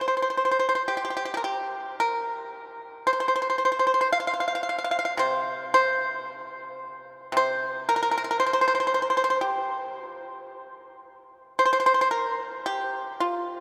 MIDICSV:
0, 0, Header, 1, 2, 480
1, 0, Start_track
1, 0, Tempo, 1117318
1, 854, Tempo, 1077199
1, 1335, Time_signature, 4, 2, 24, 8
1, 2774, Tempo, 1048951
1, 4214, Tempo, 1075269
1, 6070, End_track
2, 0, Start_track
2, 0, Title_t, "Pipa"
2, 0, Program_c, 0, 105
2, 0, Note_on_c, 0, 46, 39
2, 5, Note_on_c, 0, 72, 38
2, 28, Note_off_c, 0, 72, 0
2, 33, Note_on_c, 0, 72, 42
2, 60, Note_off_c, 0, 72, 0
2, 72, Note_on_c, 0, 72, 36
2, 91, Note_off_c, 0, 72, 0
2, 96, Note_on_c, 0, 72, 42
2, 125, Note_off_c, 0, 72, 0
2, 129, Note_on_c, 0, 72, 37
2, 155, Note_off_c, 0, 72, 0
2, 161, Note_on_c, 0, 72, 39
2, 188, Note_off_c, 0, 72, 0
2, 193, Note_on_c, 0, 72, 35
2, 216, Note_off_c, 0, 72, 0
2, 221, Note_on_c, 0, 72, 44
2, 250, Note_off_c, 0, 72, 0
2, 255, Note_on_c, 0, 72, 38
2, 286, Note_off_c, 0, 72, 0
2, 295, Note_on_c, 0, 72, 44
2, 317, Note_off_c, 0, 72, 0
2, 323, Note_on_c, 0, 72, 42
2, 353, Note_off_c, 0, 72, 0
2, 378, Note_on_c, 0, 67, 55
2, 410, Note_off_c, 0, 67, 0
2, 417, Note_on_c, 0, 67, 43
2, 444, Note_off_c, 0, 67, 0
2, 449, Note_on_c, 0, 67, 47
2, 469, Note_off_c, 0, 67, 0
2, 474, Note_on_c, 0, 67, 40
2, 496, Note_off_c, 0, 67, 0
2, 501, Note_on_c, 0, 67, 47
2, 534, Note_off_c, 0, 67, 0
2, 539, Note_on_c, 0, 67, 41
2, 571, Note_off_c, 0, 67, 0
2, 575, Note_on_c, 0, 67, 46
2, 587, Note_off_c, 0, 67, 0
2, 589, Note_on_c, 0, 70, 43
2, 617, Note_off_c, 0, 70, 0
2, 619, Note_on_c, 0, 67, 56
2, 837, Note_off_c, 0, 67, 0
2, 854, Note_off_c, 0, 46, 0
2, 859, Note_on_c, 0, 70, 60
2, 1320, Note_off_c, 0, 70, 0
2, 1335, Note_on_c, 0, 72, 66
2, 1357, Note_off_c, 0, 72, 0
2, 1395, Note_on_c, 0, 72, 52
2, 1425, Note_off_c, 0, 72, 0
2, 1430, Note_on_c, 0, 72, 43
2, 1458, Note_off_c, 0, 72, 0
2, 1463, Note_on_c, 0, 72, 46
2, 1486, Note_off_c, 0, 72, 0
2, 1492, Note_on_c, 0, 72, 40
2, 1521, Note_off_c, 0, 72, 0
2, 1526, Note_on_c, 0, 72, 47
2, 1558, Note_off_c, 0, 72, 0
2, 1564, Note_on_c, 0, 72, 39
2, 1589, Note_off_c, 0, 72, 0
2, 1595, Note_on_c, 0, 72, 43
2, 1619, Note_off_c, 0, 72, 0
2, 1625, Note_on_c, 0, 72, 38
2, 1653, Note_off_c, 0, 72, 0
2, 1659, Note_on_c, 0, 72, 46
2, 1686, Note_off_c, 0, 72, 0
2, 1692, Note_on_c, 0, 72, 41
2, 1718, Note_off_c, 0, 72, 0
2, 1724, Note_on_c, 0, 72, 50
2, 1749, Note_off_c, 0, 72, 0
2, 1755, Note_on_c, 0, 72, 50
2, 1784, Note_off_c, 0, 72, 0
2, 1806, Note_on_c, 0, 77, 66
2, 1834, Note_off_c, 0, 77, 0
2, 1839, Note_on_c, 0, 77, 47
2, 1867, Note_off_c, 0, 77, 0
2, 1872, Note_on_c, 0, 77, 52
2, 1895, Note_off_c, 0, 77, 0
2, 1900, Note_on_c, 0, 77, 41
2, 1924, Note_off_c, 0, 77, 0
2, 1930, Note_on_c, 0, 77, 53
2, 1958, Note_off_c, 0, 77, 0
2, 1963, Note_on_c, 0, 77, 40
2, 1990, Note_off_c, 0, 77, 0
2, 1996, Note_on_c, 0, 77, 50
2, 2026, Note_off_c, 0, 77, 0
2, 2031, Note_on_c, 0, 77, 43
2, 2053, Note_off_c, 0, 77, 0
2, 2059, Note_on_c, 0, 77, 46
2, 2093, Note_off_c, 0, 77, 0
2, 2100, Note_on_c, 0, 77, 43
2, 2121, Note_off_c, 0, 77, 0
2, 2127, Note_on_c, 0, 77, 51
2, 2152, Note_off_c, 0, 77, 0
2, 2157, Note_on_c, 0, 77, 46
2, 2185, Note_off_c, 0, 77, 0
2, 2191, Note_on_c, 0, 77, 52
2, 2213, Note_off_c, 0, 77, 0
2, 2218, Note_on_c, 0, 77, 48
2, 2255, Note_off_c, 0, 77, 0
2, 2274, Note_on_c, 0, 48, 49
2, 2282, Note_on_c, 0, 72, 63
2, 2511, Note_off_c, 0, 72, 0
2, 2526, Note_on_c, 0, 72, 64
2, 2996, Note_off_c, 0, 72, 0
2, 3238, Note_off_c, 0, 48, 0
2, 3243, Note_on_c, 0, 48, 51
2, 3264, Note_on_c, 0, 72, 80
2, 3480, Note_off_c, 0, 72, 0
2, 3502, Note_on_c, 0, 70, 68
2, 3527, Note_off_c, 0, 70, 0
2, 3535, Note_on_c, 0, 70, 54
2, 3560, Note_off_c, 0, 70, 0
2, 3565, Note_on_c, 0, 70, 57
2, 3591, Note_off_c, 0, 70, 0
2, 3606, Note_on_c, 0, 70, 51
2, 3627, Note_off_c, 0, 70, 0
2, 3634, Note_on_c, 0, 70, 61
2, 3657, Note_off_c, 0, 70, 0
2, 3665, Note_on_c, 0, 70, 50
2, 3689, Note_off_c, 0, 70, 0
2, 3694, Note_on_c, 0, 70, 59
2, 3719, Note_off_c, 0, 70, 0
2, 3735, Note_on_c, 0, 72, 71
2, 3760, Note_off_c, 0, 72, 0
2, 3766, Note_on_c, 0, 72, 50
2, 3792, Note_off_c, 0, 72, 0
2, 3797, Note_on_c, 0, 72, 55
2, 3826, Note_off_c, 0, 72, 0
2, 3834, Note_on_c, 0, 72, 50
2, 3858, Note_off_c, 0, 72, 0
2, 3863, Note_on_c, 0, 72, 57
2, 3890, Note_off_c, 0, 72, 0
2, 3895, Note_on_c, 0, 72, 47
2, 3914, Note_off_c, 0, 72, 0
2, 3919, Note_on_c, 0, 72, 52
2, 3946, Note_off_c, 0, 72, 0
2, 3952, Note_on_c, 0, 72, 46
2, 3980, Note_off_c, 0, 72, 0
2, 3985, Note_on_c, 0, 72, 52
2, 4015, Note_off_c, 0, 72, 0
2, 4021, Note_on_c, 0, 72, 47
2, 4052, Note_off_c, 0, 72, 0
2, 4057, Note_on_c, 0, 72, 53
2, 4084, Note_off_c, 0, 72, 0
2, 4089, Note_on_c, 0, 72, 46
2, 4115, Note_off_c, 0, 72, 0
2, 4121, Note_on_c, 0, 72, 58
2, 4143, Note_off_c, 0, 72, 0
2, 4149, Note_on_c, 0, 72, 49
2, 4182, Note_off_c, 0, 72, 0
2, 4199, Note_on_c, 0, 67, 55
2, 4441, Note_off_c, 0, 67, 0
2, 4441, Note_on_c, 0, 66, 55
2, 4499, Note_off_c, 0, 66, 0
2, 4499, Note_on_c, 0, 65, 55
2, 4666, Note_off_c, 0, 65, 0
2, 4684, Note_off_c, 0, 48, 0
2, 5172, Note_on_c, 0, 72, 67
2, 5196, Note_off_c, 0, 72, 0
2, 5201, Note_on_c, 0, 72, 53
2, 5228, Note_off_c, 0, 72, 0
2, 5234, Note_on_c, 0, 72, 58
2, 5259, Note_off_c, 0, 72, 0
2, 5265, Note_on_c, 0, 72, 51
2, 5288, Note_off_c, 0, 72, 0
2, 5293, Note_on_c, 0, 72, 62
2, 5325, Note_off_c, 0, 72, 0
2, 5330, Note_on_c, 0, 72, 50
2, 5355, Note_off_c, 0, 72, 0
2, 5361, Note_on_c, 0, 72, 57
2, 5391, Note_off_c, 0, 72, 0
2, 5404, Note_on_c, 0, 70, 62
2, 5628, Note_off_c, 0, 70, 0
2, 5649, Note_on_c, 0, 67, 61
2, 5873, Note_off_c, 0, 67, 0
2, 5893, Note_on_c, 0, 65, 54
2, 6070, Note_off_c, 0, 65, 0
2, 6070, End_track
0, 0, End_of_file